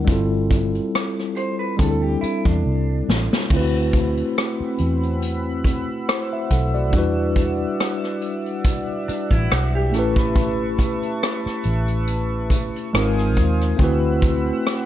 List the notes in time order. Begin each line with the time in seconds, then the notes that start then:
Already playing: A#4
0.05 G1 G3 C4 E4, kick
0.09 F4 A4, closed hi-hat
0.51 kick, closed hi-hat
0.75 closed hi-hat
0.95 cross-stick, closed hi-hat
1.19 cross-stick
1.36 C5, closed hi-hat
1.59 B4
1.77 D2 G3 C4 A4, kick, closed hi-hat
1.81 D4 E4 G#4
1.91 A4
2.02 G4
2.21 E4, muted fingered electric bass stroke, closed hi-hat
2.45 E2 D4, kick
2.66 C2
3.08 A1, snare
3.33 snare
3.49 D2 A3 C4 F#5 B5 E6, kick, crash
3.53 E4 F4 B4
3.61 F#4
3.93 kick, closed hi-hat
4.17 closed hi-hat
4.38 cross-stick, closed hi-hat
4.60 muted fingered electric bass stroke
4.78 E2, closed hi-hat
5.03 closed hi-hat
5.22 closed hi-hat
5.64 kick, closed hi-hat
6.09 E4 C5, cross-stick, closed hi-hat
6.33 E5
6.50 B1 A4 F#5, kick, cross-stick, closed hi-hat
6.74 F#4 D5, closed hi-hat
6.91 E2 G3 D4 D5 E5, kick, closed hi-hat
6.95 E4 F#4 B4
7.36 kick, closed hi-hat
7.80 cross-stick, closed hi-hat
8.04 cross-stick
8.21 closed hi-hat
8.46 closed hi-hat
8.65 kick, closed hi-hat
9.08 D4, muted fingered electric bass stroke, closed hi-hat
9.31 A1 E4, kick
9.51 B1 F#4, cross-stick, closed hi-hat
9.75 G4
9.91 A1 A3 C#4 E4 A4 B4 A5 C#6, cross-stick, closed hi-hat
9.97 G4 B4
10.16 B4, kick, cross-stick
10.36 kick, closed hi-hat
10.79 kick, closed hi-hat
11.03 closed hi-hat
11.23 cross-stick, closed hi-hat
11.46 muted fingered electric bass stroke, cross-stick
11.64 A1, closed hi-hat
11.88 closed hi-hat
12.08 closed hi-hat
12.50 kick, closed hi-hat
12.76 closed hi-hat
12.93 G#1 G#3 C4 D#4 F4 A#4 C5 F5 G#5 D#6, cross-stick, closed hi-hat
13.18 cross-stick
13.37 D#2, kick, closed hi-hat
13.61 cross-stick, closed hi-hat
13.77 D2 A3 C4 E4 F#5 B5 E6, kick, closed hi-hat
13.82 F#4 B4
14.22 kick, closed hi-hat
14.67 cross-stick, closed hi-hat